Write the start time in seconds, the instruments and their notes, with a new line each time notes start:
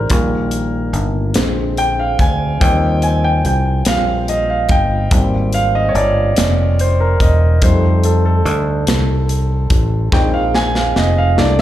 Already playing: grand piano D#3 G#3 C4 A#4 C5 D5
0.10 fingered electric bass A#1, grand piano D#3 G3 A#3, kick, closed hi-hat
0.51 closed hi-hat
0.93 fingered electric bass G1, closed hi-hat
1.34 fingered electric bass A#1, grand piano D3 G#3 C4, snare, closed hi-hat
1.77 grand piano G5, closed hi-hat
2.00 grand piano F5
2.19 fingered electric bass D2, grand piano G#5, kick, closed hi-hat
2.60 fingered electric bass D#2, grand piano F3 G3 C4 G5, kick, closed hi-hat
3.02 grand piano G#5, closed hi-hat
3.24 grand piano G5
3.45 fingered electric bass C2, grand piano G5, closed hi-hat
3.85 fingered electric bass A#1, grand piano F3 G3 C4 F5, snare, closed hi-hat
4.28 grand piano D#5, closed hi-hat
4.50 grand piano F5
4.69 fingered electric bass G1, grand piano G5, kick, closed hi-hat
5.11 fingered electric bass G#1, grand piano G3 A#3 C4, kick, closed hi-hat
5.53 grand piano F5, closed hi-hat
5.75 grand piano D#5
5.89 grand piano C#5
5.95 fingered electric bass G1, grand piano D5, closed hi-hat
6.36 fingered electric bass F1, snare, closed hi-hat
6.79 grand piano C5, closed hi-hat
7.00 grand piano A#4
7.20 fingered electric bass E1, grand piano D#5, kick, closed hi-hat
7.62 fingered electric bass F2, grand piano G3 A3 D#4 C5, kick, closed hi-hat
8.04 grand piano A4, closed hi-hat
8.25 grand piano A4
8.45 fingered electric bass D2, closed hi-hat
8.87 fingered electric bass C2, snare, closed hi-hat
9.29 closed hi-hat
9.70 fingered electric bass A1, kick, closed hi-hat
10.12 fingered electric bass A#1, grand piano G#3 C4 D#4 G5, kick, snare
10.34 grand piano F5
10.55 grand piano G#5, snare
10.75 grand piano F5, snare
10.96 fingered electric bass F1, grand piano D#5, snare
11.18 grand piano F5
11.36 fingered electric bass C2, grand piano A3 A#3 D4 E4 D5, snare